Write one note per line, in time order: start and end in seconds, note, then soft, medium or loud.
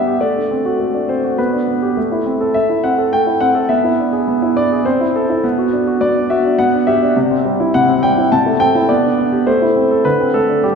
0.00 0.19 G3 soft
0.00 0.16 B3 soft
0.00 0.21 E5 medium
0.07 0.22 G4 soft
0.21 0.78 A3 soft
0.21 1.09 D5 soft
0.36 0.59 D4 soft
0.51 0.74 C4 soft
0.65 0.88 F#4 soft
0.80 1.36 A3 soft
0.94 1.18 D4 soft
1.09 1.32 C4 soft
1.09 1.38 C5 soft
1.24 1.39 F#4 soft
1.38 1.66 B3 soft
1.38 1.97 B4 soft
1.53 1.77 D4 soft
1.68 1.91 B3 soft
1.82 1.97 G4 soft
1.97 2.54 A3 soft
2.12 2.35 E4 soft
2.26 2.49 C4 soft
2.41 2.64 A4 soft
2.54 3.12 A3 soft
2.54 2.83 E5 medium
2.69 2.92 E4 soft
2.84 3.07 C4 soft
2.84 3.12 F#5 medium
2.98 3.21 A4 soft
3.13 3.69 A3 soft
3.13 3.41 G5 medium
3.27 3.50 E4 soft
3.40 3.64 C4 soft
3.40 3.70 F#5 medium
3.55 3.70 A4 soft
3.69 4.26 B3 soft
3.69 4.56 E5 medium
3.84 4.07 E4 soft
3.99 4.22 D4 soft
4.13 4.36 G#4 soft
4.28 4.84 B3 soft
4.42 4.65 E4 soft
4.57 4.80 D4 soft
4.57 4.86 D5 medium
4.72 4.86 G#4 soft
4.85 5.42 C4 soft
4.85 5.43 C5 medium
5.01 5.24 E4 soft
5.16 5.38 A4 soft
5.30 5.44 E4 soft
5.44 6.00 B3 soft
5.58 5.81 F#4 soft
5.73 5.96 D4 soft
5.87 6.10 F#4 soft
6.01 6.57 B3 soft
6.01 6.30 D5 medium
6.16 6.39 D4 soft
6.30 6.53 F#4 soft
6.30 6.58 E5 medium
6.45 6.59 D4 soft
6.58 7.14 B3 soft
6.58 6.87 F#5 medium
6.73 6.96 D4 soft
6.87 7.10 G4 soft
6.87 7.16 E5 medium
7.02 7.16 D4 soft
7.16 7.73 C3 medium
7.31 7.54 C4 soft
7.45 7.68 G3 soft
7.60 7.83 E4 soft
7.74 8.30 C3 soft
7.74 8.03 F#5 medium
7.89 8.12 C4 soft
8.03 8.26 G3 soft
8.03 8.31 G5 medium
8.18 8.32 E4 soft
8.32 8.88 C3 soft
8.32 8.60 A5 medium
8.46 8.69 A3 soft
8.60 8.83 C4 soft
8.60 8.89 G5 medium
8.75 8.89 E4 soft
8.89 9.17 B3 soft
8.89 9.47 D5 medium
9.04 9.27 D4 soft
9.18 9.41 B3 soft
9.32 9.47 G4 soft
9.47 10.03 A3 soft
9.47 10.05 C5 medium
9.62 9.85 E4 soft
9.76 9.99 C4 soft
9.91 10.05 A4 soft
10.05 10.62 D3 soft
10.05 10.34 B4 medium
10.20 10.43 C4 soft
10.34 10.58 A3 soft
10.34 10.64 A4 medium
10.49 10.64 D4 soft
10.63 10.75 G3 soft
10.63 10.75 G4 medium